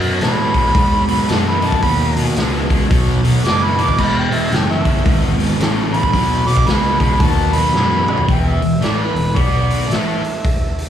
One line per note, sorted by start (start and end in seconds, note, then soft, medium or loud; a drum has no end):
0.00 0.19 F#2 medium
0.00 0.18 B2 medium
0.00 0.18 F#3 medium
0.00 open hi-hat medium
0.21 0.73 A2 medium
0.21 0.51 B2 medium
0.21 0.51 G#3 medium
0.21 1.31 B5 loud
0.21 snare loud
0.21 open hi-hat medium
0.39 snare soft
0.53 0.71 B2 medium
0.53 0.72 G#3 medium
0.53 kick medium
0.53 open hi-hat medium
0.73 1.27 G#2 medium
0.73 1.04 B2 medium
0.73 1.04 F#3 loud
0.73 kick loud
0.73 open hi-hat medium
1.08 1.26 B2 medium
1.08 1.26 F#3 medium
1.08 open hi-hat medium
1.28 1.81 F#2 medium
1.28 1.58 B2 medium
1.28 1.58 G#3 medium
1.28 1.46 A5 medium
1.28 snare loud
1.28 open hi-hat medium
1.48 1.67 B5 medium
1.61 1.80 B2 medium
1.61 1.80 G#3 loud
1.61 open hi-hat medium
1.66 1.82 A5 loud
1.72 kick medium
1.82 2.35 D#2 medium
1.82 2.13 B2 medium
1.82 2.13 F#3 medium
1.82 2.34 B5 loud
1.82 kick loud
1.82 open hi-hat medium
2.16 2.34 B2 medium
2.16 2.34 F#3 medium
2.16 open hi-hat medium
2.36 2.89 C#2 medium
2.36 2.67 B2 medium
2.36 2.67 G#3 medium
2.36 snare loud
2.36 open hi-hat medium
2.69 2.88 B2 medium
2.69 2.88 G#3 medium
2.69 kick medium
2.69 open hi-hat medium
2.90 3.42 B1 medium
2.90 3.20 B2 medium
2.90 3.20 F#3 medium
2.90 kick loud
2.90 open hi-hat medium
3.24 3.42 B2 medium
3.24 3.42 F#3 medium
3.24 open hi-hat medium
3.44 3.97 F#1 loud
3.44 3.74 B2 medium
3.44 3.74 G#3 medium
3.44 3.65 D6 loud
3.44 snare loud
3.44 open hi-hat medium
3.63 3.84 B5 loud
3.77 3.95 B2 medium
3.77 3.96 G#3 medium
3.77 open hi-hat medium
3.82 4.01 D6 medium
3.88 kick medium
3.98 4.50 E1 medium
3.98 4.28 E2 medium
3.98 4.28 B2 medium
3.98 4.16 B5 loud
3.98 kick medium
3.98 crash medium
4.18 4.35 G5 loud
4.31 4.49 E2 medium
4.31 4.49 B2 medium
4.31 4.51 E5 loud
4.31 open hi-hat medium
4.51 5.04 F#1 medium
4.51 4.81 E2 medium
4.51 4.82 C#3 medium
4.51 4.73 G5 loud
4.51 snare loud
4.51 open hi-hat medium
4.71 5.22 E5 loud
4.71 snare soft
4.84 5.03 E2 medium
4.84 5.03 C#3 medium
4.84 kick medium
4.84 open hi-hat medium
5.04 5.58 G#1 medium
5.04 5.35 E2 medium
5.04 5.35 B2 loud
5.04 kick loud
5.04 open hi-hat medium
5.38 5.57 E2 medium
5.38 5.57 B2 medium
5.38 open hi-hat medium
5.59 6.12 A1 loud
5.59 5.89 E2 medium
5.59 5.89 C#3 loud
5.59 snare loud
5.59 open hi-hat medium
5.90 6.10 E2 medium
5.90 6.10 C#3 medium
5.90 6.48 B5 loud
5.90 open hi-hat medium
6.03 kick medium
6.12 6.65 B1 medium
6.12 6.43 B2 medium
6.12 6.43 F#3 loud
6.12 kick medium
6.12 open hi-hat medium
6.46 6.65 B2 medium
6.46 6.65 F#3 loud
6.46 6.69 D6 loud
6.46 open hi-hat medium
6.57 kick medium
6.66 7.19 C#2 medium
6.66 6.97 B2 medium
6.66 6.97 G#3 loud
6.66 6.99 B5 loud
6.66 snare loud
6.66 open hi-hat medium
6.86 snare soft
7.00 7.18 B2 medium
7.00 7.19 G#3 medium
7.00 7.22 B5 loud
7.00 kick medium
7.00 open hi-hat medium
7.20 7.73 D#2 medium
7.20 7.51 B2 loud
7.20 7.51 F#3 loud
7.20 7.55 A5 loud
7.20 kick loud
7.20 open hi-hat medium
7.53 7.72 B2 medium
7.53 7.72 F#3 medium
7.53 8.26 B5 loud
7.53 open hi-hat medium
7.74 8.05 F#2 loud
7.74 8.04 B2 medium
7.74 8.05 G#3 loud
7.74 snare medium
8.08 8.26 B2 medium
8.08 8.27 G#3 medium
8.08 muted picked electric bass stroke soft
8.08 mid tom medium
8.17 floor tom medium
8.28 8.59 E1 loud
8.28 8.60 E2 medium
8.28 8.61 E3 medium
8.28 8.49 G5 medium
8.28 kick loud
8.28 open hi-hat medium
8.48 8.85 E5 medium
8.62 8.80 E1 medium
8.62 8.78 E2 medium
8.62 open hi-hat soft
8.81 9.13 A1 medium
8.81 9.14 A2 medium
8.81 9.15 A3 medium
8.81 9.02 D5 medium
8.81 snare loud
8.81 open hi-hat medium
9.00 9.37 B4 medium
9.14 9.35 E1 medium
9.14 9.31 E2 medium
9.14 open hi-hat soft
9.34 9.87 B1 medium
9.34 9.88 B2 loud
9.34 9.88 B3 loud
9.34 9.93 D5 medium
9.34 kick loud
9.34 open hi-hat medium
9.70 open hi-hat medium
9.88 10.22 A1 medium
9.88 10.22 A2 medium
9.88 10.22 A3 medium
9.88 10.89 E5 medium
9.88 open hi-hat medium
9.93 snare loud
10.24 open hi-hat medium
10.44 kick loud
10.44 open hi-hat medium
10.78 open hi-hat medium